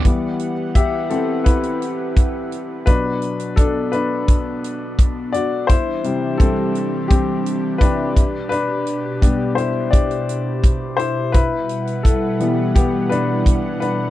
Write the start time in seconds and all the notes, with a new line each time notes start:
0.04 E3 G3 B3 E4 G4 B4 F#5, kick, closed hi-hat
0.39 closed hi-hat
0.75 G4 E5, kick, closed hi-hat
1.10 C4 A4, closed hi-hat
1.44 E4 B4, kick, closed hi-hat
1.63 closed hi-hat
1.82 closed hi-hat
2.17 kick, closed hi-hat
2.52 closed hi-hat
2.86 B2 F#3 B3 D4 B4, kick, closed hi-hat
3.22 closed hi-hat
3.39 closed hi-hat
3.56 D4 A4, kick, closed hi-hat
3.92 D4 B4, closed hi-hat
4.28 kick, closed hi-hat
4.64 closed hi-hat
4.99 kick, closed hi-hat
5.33 F#4 D5, closed hi-hat
5.67 E3 G3 C4 E4 G4 C5, kick, closed hi-hat
6.04 C3 G3 E4, closed hi-hat
6.38 C4 A4, kick, closed hi-hat
6.75 closed hi-hat
7.08 C4 G4, kick, closed hi-hat
7.46 closed hi-hat
7.78 C3 G3 D4 E4 B4, kick, closed hi-hat
8.16 B2, kick, closed hi-hat
8.49 D4 B4, closed hi-hat
8.87 closed hi-hat
9.21 G3 B3 D4, kick, closed hi-hat
9.55 E4 C5, closed hi-hat
9.91 G4 D5, kick, closed hi-hat
10.11 closed hi-hat
10.29 closed hi-hat
10.64 kick, closed hi-hat
10.97 E4 C5, closed hi-hat
11.32 G3 E4 B4 F#5, kick, closed hi-hat
11.69 closed hi-hat
11.87 closed hi-hat
12.03 E4 A4, kick, closed hi-hat
12.40 E3 G3 B3, closed hi-hat
12.75 B3 G4, kick, closed hi-hat
13.09 D4 B4, closed hi-hat
13.46 kick, closed hi-hat
13.80 D4 B4, closed hi-hat